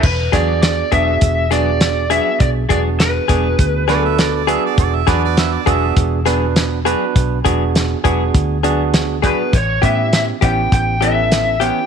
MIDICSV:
0, 0, Header, 1, 7, 480
1, 0, Start_track
1, 0, Tempo, 594059
1, 27, Time_signature, 4, 2, 24, 8
1, 9585, End_track
2, 0, Start_track
2, 0, Title_t, "Harmonica"
2, 0, Program_c, 0, 22
2, 3152, Note_on_c, 0, 74, 79
2, 3264, Note_off_c, 0, 74, 0
2, 3274, Note_on_c, 0, 76, 82
2, 3392, Note_on_c, 0, 74, 89
2, 3404, Note_off_c, 0, 76, 0
2, 3504, Note_off_c, 0, 74, 0
2, 3519, Note_on_c, 0, 74, 76
2, 3635, Note_on_c, 0, 76, 86
2, 3647, Note_off_c, 0, 74, 0
2, 3746, Note_off_c, 0, 76, 0
2, 3764, Note_on_c, 0, 74, 81
2, 3863, Note_off_c, 0, 74, 0
2, 3874, Note_on_c, 0, 74, 86
2, 3998, Note_on_c, 0, 76, 79
2, 4010, Note_off_c, 0, 74, 0
2, 4116, Note_on_c, 0, 74, 91
2, 4128, Note_off_c, 0, 76, 0
2, 4226, Note_off_c, 0, 74, 0
2, 4241, Note_on_c, 0, 74, 96
2, 4342, Note_off_c, 0, 74, 0
2, 4352, Note_on_c, 0, 76, 85
2, 4472, Note_on_c, 0, 74, 82
2, 4484, Note_off_c, 0, 76, 0
2, 4577, Note_off_c, 0, 74, 0
2, 4596, Note_on_c, 0, 76, 91
2, 4822, Note_off_c, 0, 76, 0
2, 9585, End_track
3, 0, Start_track
3, 0, Title_t, "Lead electric guitar"
3, 0, Program_c, 1, 29
3, 36, Note_on_c, 1, 71, 92
3, 267, Note_on_c, 1, 74, 77
3, 278, Note_off_c, 1, 71, 0
3, 499, Note_off_c, 1, 74, 0
3, 509, Note_on_c, 1, 74, 93
3, 746, Note_off_c, 1, 74, 0
3, 750, Note_on_c, 1, 76, 106
3, 1224, Note_off_c, 1, 76, 0
3, 1227, Note_on_c, 1, 74, 110
3, 1701, Note_off_c, 1, 74, 0
3, 1704, Note_on_c, 1, 76, 92
3, 1937, Note_off_c, 1, 76, 0
3, 1940, Note_on_c, 1, 74, 92
3, 2006, Note_off_c, 1, 74, 0
3, 2182, Note_on_c, 1, 74, 87
3, 2247, Note_off_c, 1, 74, 0
3, 2427, Note_on_c, 1, 71, 77
3, 3211, Note_off_c, 1, 71, 0
3, 3211, Note_on_c, 1, 69, 77
3, 3592, Note_off_c, 1, 69, 0
3, 7479, Note_on_c, 1, 71, 84
3, 7718, Note_off_c, 1, 71, 0
3, 7718, Note_on_c, 1, 73, 77
3, 7953, Note_off_c, 1, 73, 0
3, 7957, Note_on_c, 1, 76, 80
3, 8190, Note_off_c, 1, 76, 0
3, 8200, Note_on_c, 1, 76, 84
3, 8263, Note_off_c, 1, 76, 0
3, 8439, Note_on_c, 1, 79, 80
3, 8668, Note_off_c, 1, 79, 0
3, 8678, Note_on_c, 1, 79, 106
3, 8913, Note_on_c, 1, 76, 96
3, 8918, Note_off_c, 1, 79, 0
3, 9390, Note_on_c, 1, 79, 86
3, 9403, Note_off_c, 1, 76, 0
3, 9585, Note_off_c, 1, 79, 0
3, 9585, End_track
4, 0, Start_track
4, 0, Title_t, "Tine electric piano"
4, 0, Program_c, 2, 4
4, 266, Note_on_c, 2, 59, 77
4, 267, Note_on_c, 2, 62, 74
4, 272, Note_on_c, 2, 66, 67
4, 273, Note_on_c, 2, 68, 89
4, 691, Note_off_c, 2, 59, 0
4, 692, Note_off_c, 2, 62, 0
4, 694, Note_off_c, 2, 66, 0
4, 695, Note_off_c, 2, 68, 0
4, 744, Note_on_c, 2, 59, 78
4, 745, Note_on_c, 2, 62, 66
4, 747, Note_on_c, 2, 68, 84
4, 748, Note_on_c, 2, 66, 67
4, 1170, Note_off_c, 2, 59, 0
4, 1170, Note_off_c, 2, 62, 0
4, 1171, Note_off_c, 2, 68, 0
4, 1172, Note_off_c, 2, 66, 0
4, 1221, Note_on_c, 2, 59, 70
4, 1224, Note_on_c, 2, 66, 68
4, 1225, Note_on_c, 2, 62, 60
4, 1228, Note_on_c, 2, 68, 75
4, 1648, Note_off_c, 2, 59, 0
4, 1649, Note_off_c, 2, 66, 0
4, 1650, Note_off_c, 2, 62, 0
4, 1651, Note_off_c, 2, 68, 0
4, 1704, Note_on_c, 2, 59, 71
4, 1705, Note_on_c, 2, 62, 56
4, 1707, Note_on_c, 2, 66, 63
4, 1709, Note_on_c, 2, 68, 77
4, 2129, Note_off_c, 2, 59, 0
4, 2130, Note_off_c, 2, 62, 0
4, 2131, Note_off_c, 2, 66, 0
4, 2132, Note_off_c, 2, 68, 0
4, 2182, Note_on_c, 2, 59, 62
4, 2185, Note_on_c, 2, 62, 69
4, 2186, Note_on_c, 2, 66, 64
4, 2187, Note_on_c, 2, 68, 71
4, 2608, Note_off_c, 2, 59, 0
4, 2610, Note_off_c, 2, 62, 0
4, 2610, Note_off_c, 2, 66, 0
4, 2611, Note_off_c, 2, 68, 0
4, 2664, Note_on_c, 2, 59, 71
4, 2667, Note_on_c, 2, 62, 62
4, 2668, Note_on_c, 2, 68, 84
4, 2669, Note_on_c, 2, 66, 61
4, 3089, Note_off_c, 2, 59, 0
4, 3090, Note_off_c, 2, 62, 0
4, 3091, Note_off_c, 2, 68, 0
4, 3092, Note_off_c, 2, 66, 0
4, 3140, Note_on_c, 2, 59, 95
4, 3142, Note_on_c, 2, 62, 89
4, 3146, Note_on_c, 2, 66, 78
4, 3147, Note_on_c, 2, 71, 106
4, 3567, Note_off_c, 2, 59, 0
4, 3568, Note_off_c, 2, 62, 0
4, 3570, Note_off_c, 2, 66, 0
4, 3570, Note_off_c, 2, 71, 0
4, 3617, Note_on_c, 2, 59, 89
4, 3617, Note_on_c, 2, 62, 84
4, 3620, Note_on_c, 2, 66, 79
4, 3622, Note_on_c, 2, 68, 105
4, 4045, Note_off_c, 2, 59, 0
4, 4045, Note_off_c, 2, 62, 0
4, 4047, Note_off_c, 2, 66, 0
4, 4048, Note_off_c, 2, 68, 0
4, 4099, Note_on_c, 2, 59, 100
4, 4100, Note_on_c, 2, 66, 83
4, 4101, Note_on_c, 2, 62, 84
4, 4103, Note_on_c, 2, 71, 99
4, 4526, Note_off_c, 2, 59, 0
4, 4527, Note_off_c, 2, 62, 0
4, 4527, Note_off_c, 2, 66, 0
4, 4528, Note_off_c, 2, 71, 0
4, 4574, Note_on_c, 2, 59, 92
4, 4574, Note_on_c, 2, 62, 84
4, 4576, Note_on_c, 2, 66, 82
4, 4581, Note_on_c, 2, 68, 102
4, 5004, Note_off_c, 2, 59, 0
4, 5004, Note_off_c, 2, 62, 0
4, 5005, Note_off_c, 2, 66, 0
4, 5007, Note_off_c, 2, 68, 0
4, 5055, Note_on_c, 2, 59, 91
4, 5057, Note_on_c, 2, 66, 76
4, 5058, Note_on_c, 2, 62, 83
4, 5062, Note_on_c, 2, 71, 91
4, 5484, Note_off_c, 2, 59, 0
4, 5485, Note_off_c, 2, 66, 0
4, 5486, Note_off_c, 2, 62, 0
4, 5488, Note_off_c, 2, 71, 0
4, 5534, Note_on_c, 2, 59, 88
4, 5536, Note_on_c, 2, 62, 80
4, 5541, Note_on_c, 2, 66, 77
4, 5542, Note_on_c, 2, 71, 98
4, 5964, Note_off_c, 2, 59, 0
4, 5965, Note_off_c, 2, 62, 0
4, 5967, Note_off_c, 2, 66, 0
4, 5968, Note_off_c, 2, 71, 0
4, 6015, Note_on_c, 2, 59, 75
4, 6015, Note_on_c, 2, 62, 75
4, 6017, Note_on_c, 2, 68, 86
4, 6018, Note_on_c, 2, 66, 76
4, 6445, Note_off_c, 2, 59, 0
4, 6445, Note_off_c, 2, 62, 0
4, 6445, Note_off_c, 2, 68, 0
4, 6446, Note_off_c, 2, 66, 0
4, 6494, Note_on_c, 2, 62, 78
4, 6495, Note_on_c, 2, 59, 82
4, 6498, Note_on_c, 2, 66, 78
4, 6500, Note_on_c, 2, 68, 93
4, 6924, Note_off_c, 2, 62, 0
4, 6925, Note_off_c, 2, 59, 0
4, 6926, Note_off_c, 2, 66, 0
4, 6927, Note_off_c, 2, 68, 0
4, 6978, Note_on_c, 2, 59, 89
4, 6980, Note_on_c, 2, 62, 89
4, 6983, Note_on_c, 2, 66, 86
4, 6983, Note_on_c, 2, 68, 91
4, 7406, Note_off_c, 2, 59, 0
4, 7407, Note_off_c, 2, 62, 0
4, 7409, Note_off_c, 2, 66, 0
4, 7409, Note_off_c, 2, 68, 0
4, 7452, Note_on_c, 2, 59, 79
4, 7454, Note_on_c, 2, 66, 74
4, 7455, Note_on_c, 2, 62, 66
4, 7457, Note_on_c, 2, 68, 82
4, 7698, Note_off_c, 2, 59, 0
4, 7699, Note_off_c, 2, 62, 0
4, 7699, Note_off_c, 2, 66, 0
4, 7700, Note_off_c, 2, 68, 0
4, 7931, Note_on_c, 2, 59, 77
4, 7933, Note_on_c, 2, 61, 67
4, 7936, Note_on_c, 2, 64, 64
4, 7937, Note_on_c, 2, 67, 89
4, 8363, Note_off_c, 2, 59, 0
4, 8364, Note_off_c, 2, 61, 0
4, 8365, Note_off_c, 2, 64, 0
4, 8366, Note_off_c, 2, 67, 0
4, 8417, Note_on_c, 2, 59, 75
4, 8420, Note_on_c, 2, 61, 63
4, 8421, Note_on_c, 2, 64, 63
4, 8422, Note_on_c, 2, 67, 75
4, 8846, Note_off_c, 2, 59, 0
4, 8848, Note_off_c, 2, 61, 0
4, 8848, Note_off_c, 2, 64, 0
4, 8848, Note_off_c, 2, 67, 0
4, 8898, Note_on_c, 2, 59, 77
4, 8900, Note_on_c, 2, 61, 64
4, 8901, Note_on_c, 2, 69, 78
4, 8902, Note_on_c, 2, 64, 63
4, 9327, Note_off_c, 2, 59, 0
4, 9328, Note_off_c, 2, 61, 0
4, 9329, Note_off_c, 2, 64, 0
4, 9329, Note_off_c, 2, 69, 0
4, 9382, Note_on_c, 2, 59, 67
4, 9385, Note_on_c, 2, 61, 65
4, 9386, Note_on_c, 2, 64, 58
4, 9386, Note_on_c, 2, 67, 72
4, 9585, Note_off_c, 2, 59, 0
4, 9585, Note_off_c, 2, 61, 0
4, 9585, Note_off_c, 2, 64, 0
4, 9585, Note_off_c, 2, 67, 0
4, 9585, End_track
5, 0, Start_track
5, 0, Title_t, "Clean electric guitar"
5, 0, Program_c, 3, 27
5, 262, Note_on_c, 3, 68, 69
5, 268, Note_on_c, 3, 62, 66
5, 272, Note_on_c, 3, 59, 57
5, 278, Note_on_c, 3, 54, 58
5, 412, Note_off_c, 3, 68, 0
5, 415, Note_off_c, 3, 62, 0
5, 417, Note_off_c, 3, 59, 0
5, 420, Note_off_c, 3, 54, 0
5, 741, Note_on_c, 3, 68, 69
5, 746, Note_on_c, 3, 62, 77
5, 752, Note_on_c, 3, 59, 72
5, 756, Note_on_c, 3, 54, 55
5, 891, Note_off_c, 3, 68, 0
5, 894, Note_off_c, 3, 62, 0
5, 897, Note_off_c, 3, 59, 0
5, 899, Note_off_c, 3, 54, 0
5, 1218, Note_on_c, 3, 68, 72
5, 1225, Note_on_c, 3, 62, 69
5, 1231, Note_on_c, 3, 59, 62
5, 1234, Note_on_c, 3, 54, 60
5, 1370, Note_off_c, 3, 68, 0
5, 1373, Note_off_c, 3, 62, 0
5, 1376, Note_off_c, 3, 59, 0
5, 1378, Note_off_c, 3, 54, 0
5, 1697, Note_on_c, 3, 68, 82
5, 1703, Note_on_c, 3, 62, 63
5, 1707, Note_on_c, 3, 59, 61
5, 1713, Note_on_c, 3, 54, 53
5, 1849, Note_off_c, 3, 68, 0
5, 1852, Note_off_c, 3, 62, 0
5, 1854, Note_off_c, 3, 59, 0
5, 1857, Note_off_c, 3, 54, 0
5, 2176, Note_on_c, 3, 68, 71
5, 2182, Note_on_c, 3, 62, 57
5, 2188, Note_on_c, 3, 59, 59
5, 2191, Note_on_c, 3, 54, 62
5, 2328, Note_off_c, 3, 68, 0
5, 2331, Note_off_c, 3, 62, 0
5, 2334, Note_off_c, 3, 59, 0
5, 2336, Note_off_c, 3, 54, 0
5, 2652, Note_on_c, 3, 68, 72
5, 2660, Note_on_c, 3, 62, 65
5, 2665, Note_on_c, 3, 59, 61
5, 2669, Note_on_c, 3, 54, 62
5, 2806, Note_off_c, 3, 68, 0
5, 2810, Note_off_c, 3, 62, 0
5, 2812, Note_off_c, 3, 59, 0
5, 2814, Note_off_c, 3, 54, 0
5, 3133, Note_on_c, 3, 68, 83
5, 3138, Note_on_c, 3, 62, 70
5, 3145, Note_on_c, 3, 59, 82
5, 3147, Note_on_c, 3, 54, 70
5, 3286, Note_off_c, 3, 68, 0
5, 3289, Note_off_c, 3, 62, 0
5, 3292, Note_off_c, 3, 59, 0
5, 3293, Note_off_c, 3, 54, 0
5, 3615, Note_on_c, 3, 68, 86
5, 3620, Note_on_c, 3, 62, 75
5, 3625, Note_on_c, 3, 59, 75
5, 3630, Note_on_c, 3, 54, 65
5, 3767, Note_off_c, 3, 68, 0
5, 3770, Note_off_c, 3, 62, 0
5, 3772, Note_off_c, 3, 59, 0
5, 3775, Note_off_c, 3, 54, 0
5, 4095, Note_on_c, 3, 68, 83
5, 4100, Note_on_c, 3, 62, 77
5, 4105, Note_on_c, 3, 59, 70
5, 4109, Note_on_c, 3, 54, 61
5, 4247, Note_off_c, 3, 68, 0
5, 4250, Note_off_c, 3, 62, 0
5, 4252, Note_off_c, 3, 59, 0
5, 4254, Note_off_c, 3, 54, 0
5, 4575, Note_on_c, 3, 68, 79
5, 4580, Note_on_c, 3, 62, 76
5, 4586, Note_on_c, 3, 59, 74
5, 4591, Note_on_c, 3, 54, 65
5, 4727, Note_off_c, 3, 68, 0
5, 4730, Note_off_c, 3, 62, 0
5, 4733, Note_off_c, 3, 59, 0
5, 4735, Note_off_c, 3, 54, 0
5, 5055, Note_on_c, 3, 68, 82
5, 5062, Note_on_c, 3, 62, 70
5, 5066, Note_on_c, 3, 59, 74
5, 5071, Note_on_c, 3, 54, 62
5, 5207, Note_off_c, 3, 68, 0
5, 5210, Note_off_c, 3, 62, 0
5, 5212, Note_off_c, 3, 59, 0
5, 5215, Note_off_c, 3, 54, 0
5, 5537, Note_on_c, 3, 68, 82
5, 5542, Note_on_c, 3, 62, 70
5, 5548, Note_on_c, 3, 59, 72
5, 5553, Note_on_c, 3, 54, 66
5, 5688, Note_off_c, 3, 68, 0
5, 5690, Note_off_c, 3, 62, 0
5, 5693, Note_off_c, 3, 59, 0
5, 5696, Note_off_c, 3, 54, 0
5, 6016, Note_on_c, 3, 68, 78
5, 6022, Note_on_c, 3, 62, 65
5, 6027, Note_on_c, 3, 59, 67
5, 6032, Note_on_c, 3, 54, 66
5, 6168, Note_off_c, 3, 68, 0
5, 6170, Note_off_c, 3, 62, 0
5, 6173, Note_off_c, 3, 59, 0
5, 6176, Note_off_c, 3, 54, 0
5, 6497, Note_on_c, 3, 68, 89
5, 6504, Note_on_c, 3, 62, 79
5, 6507, Note_on_c, 3, 59, 77
5, 6513, Note_on_c, 3, 54, 78
5, 6648, Note_off_c, 3, 68, 0
5, 6651, Note_off_c, 3, 62, 0
5, 6653, Note_off_c, 3, 59, 0
5, 6656, Note_off_c, 3, 54, 0
5, 6976, Note_on_c, 3, 68, 73
5, 6981, Note_on_c, 3, 62, 75
5, 6987, Note_on_c, 3, 59, 73
5, 6991, Note_on_c, 3, 54, 58
5, 7128, Note_off_c, 3, 68, 0
5, 7130, Note_off_c, 3, 62, 0
5, 7133, Note_off_c, 3, 59, 0
5, 7135, Note_off_c, 3, 54, 0
5, 7453, Note_on_c, 3, 68, 68
5, 7461, Note_on_c, 3, 62, 68
5, 7465, Note_on_c, 3, 59, 53
5, 7469, Note_on_c, 3, 54, 59
5, 7606, Note_off_c, 3, 68, 0
5, 7610, Note_off_c, 3, 62, 0
5, 7612, Note_off_c, 3, 59, 0
5, 7614, Note_off_c, 3, 54, 0
5, 7933, Note_on_c, 3, 67, 65
5, 7939, Note_on_c, 3, 61, 65
5, 7944, Note_on_c, 3, 59, 56
5, 7950, Note_on_c, 3, 52, 56
5, 8086, Note_off_c, 3, 67, 0
5, 8089, Note_off_c, 3, 61, 0
5, 8092, Note_off_c, 3, 59, 0
5, 8095, Note_off_c, 3, 52, 0
5, 8413, Note_on_c, 3, 67, 70
5, 8421, Note_on_c, 3, 61, 65
5, 8425, Note_on_c, 3, 59, 63
5, 8429, Note_on_c, 3, 52, 53
5, 8567, Note_off_c, 3, 67, 0
5, 8570, Note_off_c, 3, 61, 0
5, 8572, Note_off_c, 3, 59, 0
5, 8575, Note_off_c, 3, 52, 0
5, 8894, Note_on_c, 3, 67, 63
5, 8901, Note_on_c, 3, 61, 57
5, 8905, Note_on_c, 3, 59, 58
5, 8910, Note_on_c, 3, 52, 56
5, 9047, Note_off_c, 3, 67, 0
5, 9051, Note_off_c, 3, 61, 0
5, 9053, Note_off_c, 3, 59, 0
5, 9055, Note_off_c, 3, 52, 0
5, 9373, Note_on_c, 3, 67, 76
5, 9379, Note_on_c, 3, 61, 69
5, 9384, Note_on_c, 3, 59, 61
5, 9389, Note_on_c, 3, 52, 60
5, 9527, Note_off_c, 3, 67, 0
5, 9530, Note_off_c, 3, 61, 0
5, 9532, Note_off_c, 3, 59, 0
5, 9535, Note_off_c, 3, 52, 0
5, 9585, End_track
6, 0, Start_track
6, 0, Title_t, "Fingered electric bass"
6, 0, Program_c, 4, 33
6, 29, Note_on_c, 4, 28, 97
6, 224, Note_off_c, 4, 28, 0
6, 267, Note_on_c, 4, 40, 78
6, 659, Note_off_c, 4, 40, 0
6, 747, Note_on_c, 4, 28, 83
6, 943, Note_off_c, 4, 28, 0
6, 985, Note_on_c, 4, 28, 95
6, 1769, Note_off_c, 4, 28, 0
6, 1942, Note_on_c, 4, 35, 112
6, 2139, Note_off_c, 4, 35, 0
6, 2182, Note_on_c, 4, 28, 82
6, 2575, Note_off_c, 4, 28, 0
6, 2662, Note_on_c, 4, 28, 79
6, 2858, Note_off_c, 4, 28, 0
6, 2901, Note_on_c, 4, 38, 101
6, 3687, Note_off_c, 4, 38, 0
6, 3861, Note_on_c, 4, 28, 105
6, 4058, Note_off_c, 4, 28, 0
6, 4101, Note_on_c, 4, 40, 87
6, 4494, Note_off_c, 4, 40, 0
6, 4582, Note_on_c, 4, 28, 83
6, 4779, Note_off_c, 4, 28, 0
6, 4822, Note_on_c, 4, 28, 106
6, 5607, Note_off_c, 4, 28, 0
6, 5784, Note_on_c, 4, 35, 92
6, 5980, Note_off_c, 4, 35, 0
6, 6023, Note_on_c, 4, 28, 87
6, 6415, Note_off_c, 4, 28, 0
6, 6504, Note_on_c, 4, 28, 84
6, 6700, Note_off_c, 4, 28, 0
6, 6743, Note_on_c, 4, 38, 112
6, 7528, Note_off_c, 4, 38, 0
6, 7702, Note_on_c, 4, 33, 101
6, 7899, Note_off_c, 4, 33, 0
6, 7943, Note_on_c, 4, 45, 76
6, 8336, Note_off_c, 4, 45, 0
6, 8423, Note_on_c, 4, 33, 70
6, 8619, Note_off_c, 4, 33, 0
6, 8663, Note_on_c, 4, 33, 96
6, 9449, Note_off_c, 4, 33, 0
6, 9585, End_track
7, 0, Start_track
7, 0, Title_t, "Drums"
7, 25, Note_on_c, 9, 49, 86
7, 28, Note_on_c, 9, 36, 100
7, 106, Note_off_c, 9, 49, 0
7, 109, Note_off_c, 9, 36, 0
7, 267, Note_on_c, 9, 36, 72
7, 267, Note_on_c, 9, 42, 62
7, 270, Note_on_c, 9, 38, 29
7, 348, Note_off_c, 9, 36, 0
7, 348, Note_off_c, 9, 42, 0
7, 351, Note_off_c, 9, 38, 0
7, 505, Note_on_c, 9, 42, 85
7, 509, Note_on_c, 9, 38, 117
7, 586, Note_off_c, 9, 42, 0
7, 589, Note_off_c, 9, 38, 0
7, 744, Note_on_c, 9, 42, 64
7, 746, Note_on_c, 9, 36, 79
7, 825, Note_off_c, 9, 42, 0
7, 827, Note_off_c, 9, 36, 0
7, 980, Note_on_c, 9, 42, 89
7, 984, Note_on_c, 9, 36, 103
7, 1061, Note_off_c, 9, 42, 0
7, 1065, Note_off_c, 9, 36, 0
7, 1225, Note_on_c, 9, 42, 68
7, 1228, Note_on_c, 9, 38, 34
7, 1305, Note_off_c, 9, 42, 0
7, 1309, Note_off_c, 9, 38, 0
7, 1459, Note_on_c, 9, 42, 77
7, 1462, Note_on_c, 9, 38, 104
7, 1540, Note_off_c, 9, 42, 0
7, 1543, Note_off_c, 9, 38, 0
7, 1702, Note_on_c, 9, 42, 64
7, 1783, Note_off_c, 9, 42, 0
7, 1940, Note_on_c, 9, 42, 75
7, 1942, Note_on_c, 9, 36, 99
7, 2020, Note_off_c, 9, 42, 0
7, 2023, Note_off_c, 9, 36, 0
7, 2182, Note_on_c, 9, 36, 77
7, 2184, Note_on_c, 9, 42, 62
7, 2263, Note_off_c, 9, 36, 0
7, 2265, Note_off_c, 9, 42, 0
7, 2422, Note_on_c, 9, 42, 78
7, 2425, Note_on_c, 9, 38, 107
7, 2503, Note_off_c, 9, 42, 0
7, 2506, Note_off_c, 9, 38, 0
7, 2659, Note_on_c, 9, 42, 61
7, 2661, Note_on_c, 9, 36, 87
7, 2740, Note_off_c, 9, 42, 0
7, 2741, Note_off_c, 9, 36, 0
7, 2899, Note_on_c, 9, 42, 74
7, 2900, Note_on_c, 9, 36, 104
7, 2979, Note_off_c, 9, 42, 0
7, 2981, Note_off_c, 9, 36, 0
7, 3142, Note_on_c, 9, 42, 57
7, 3145, Note_on_c, 9, 38, 36
7, 3223, Note_off_c, 9, 42, 0
7, 3226, Note_off_c, 9, 38, 0
7, 3382, Note_on_c, 9, 42, 81
7, 3385, Note_on_c, 9, 38, 99
7, 3463, Note_off_c, 9, 42, 0
7, 3466, Note_off_c, 9, 38, 0
7, 3623, Note_on_c, 9, 42, 58
7, 3704, Note_off_c, 9, 42, 0
7, 3860, Note_on_c, 9, 42, 73
7, 3861, Note_on_c, 9, 36, 103
7, 3941, Note_off_c, 9, 42, 0
7, 3942, Note_off_c, 9, 36, 0
7, 4101, Note_on_c, 9, 36, 74
7, 4101, Note_on_c, 9, 42, 61
7, 4104, Note_on_c, 9, 38, 33
7, 4181, Note_off_c, 9, 42, 0
7, 4182, Note_off_c, 9, 36, 0
7, 4185, Note_off_c, 9, 38, 0
7, 4341, Note_on_c, 9, 42, 90
7, 4344, Note_on_c, 9, 38, 115
7, 4422, Note_off_c, 9, 42, 0
7, 4425, Note_off_c, 9, 38, 0
7, 4582, Note_on_c, 9, 36, 81
7, 4582, Note_on_c, 9, 42, 65
7, 4662, Note_off_c, 9, 36, 0
7, 4663, Note_off_c, 9, 42, 0
7, 4819, Note_on_c, 9, 42, 85
7, 4821, Note_on_c, 9, 36, 106
7, 4900, Note_off_c, 9, 42, 0
7, 4902, Note_off_c, 9, 36, 0
7, 5061, Note_on_c, 9, 42, 67
7, 5064, Note_on_c, 9, 38, 35
7, 5142, Note_off_c, 9, 42, 0
7, 5145, Note_off_c, 9, 38, 0
7, 5300, Note_on_c, 9, 42, 81
7, 5304, Note_on_c, 9, 38, 104
7, 5381, Note_off_c, 9, 42, 0
7, 5385, Note_off_c, 9, 38, 0
7, 5546, Note_on_c, 9, 42, 61
7, 5627, Note_off_c, 9, 42, 0
7, 5783, Note_on_c, 9, 36, 98
7, 5785, Note_on_c, 9, 42, 78
7, 5864, Note_off_c, 9, 36, 0
7, 5865, Note_off_c, 9, 42, 0
7, 6023, Note_on_c, 9, 36, 75
7, 6024, Note_on_c, 9, 42, 64
7, 6104, Note_off_c, 9, 36, 0
7, 6105, Note_off_c, 9, 42, 0
7, 6266, Note_on_c, 9, 42, 87
7, 6269, Note_on_c, 9, 38, 106
7, 6346, Note_off_c, 9, 42, 0
7, 6350, Note_off_c, 9, 38, 0
7, 6503, Note_on_c, 9, 36, 84
7, 6505, Note_on_c, 9, 42, 63
7, 6583, Note_off_c, 9, 36, 0
7, 6586, Note_off_c, 9, 42, 0
7, 6743, Note_on_c, 9, 36, 110
7, 6743, Note_on_c, 9, 42, 80
7, 6824, Note_off_c, 9, 36, 0
7, 6824, Note_off_c, 9, 42, 0
7, 6983, Note_on_c, 9, 42, 61
7, 7064, Note_off_c, 9, 42, 0
7, 7221, Note_on_c, 9, 42, 80
7, 7224, Note_on_c, 9, 38, 108
7, 7301, Note_off_c, 9, 42, 0
7, 7305, Note_off_c, 9, 38, 0
7, 7462, Note_on_c, 9, 36, 77
7, 7463, Note_on_c, 9, 42, 59
7, 7543, Note_off_c, 9, 36, 0
7, 7544, Note_off_c, 9, 42, 0
7, 7701, Note_on_c, 9, 42, 80
7, 7702, Note_on_c, 9, 36, 101
7, 7782, Note_off_c, 9, 42, 0
7, 7783, Note_off_c, 9, 36, 0
7, 7942, Note_on_c, 9, 36, 75
7, 7943, Note_on_c, 9, 42, 53
7, 8023, Note_off_c, 9, 36, 0
7, 8024, Note_off_c, 9, 42, 0
7, 8183, Note_on_c, 9, 42, 81
7, 8186, Note_on_c, 9, 38, 104
7, 8264, Note_off_c, 9, 42, 0
7, 8267, Note_off_c, 9, 38, 0
7, 8421, Note_on_c, 9, 42, 62
7, 8422, Note_on_c, 9, 36, 90
7, 8501, Note_off_c, 9, 42, 0
7, 8503, Note_off_c, 9, 36, 0
7, 8663, Note_on_c, 9, 36, 95
7, 8665, Note_on_c, 9, 42, 76
7, 8744, Note_off_c, 9, 36, 0
7, 8746, Note_off_c, 9, 42, 0
7, 8907, Note_on_c, 9, 42, 65
7, 8987, Note_off_c, 9, 42, 0
7, 9143, Note_on_c, 9, 42, 88
7, 9146, Note_on_c, 9, 38, 102
7, 9224, Note_off_c, 9, 42, 0
7, 9227, Note_off_c, 9, 38, 0
7, 9383, Note_on_c, 9, 42, 62
7, 9463, Note_off_c, 9, 42, 0
7, 9585, End_track
0, 0, End_of_file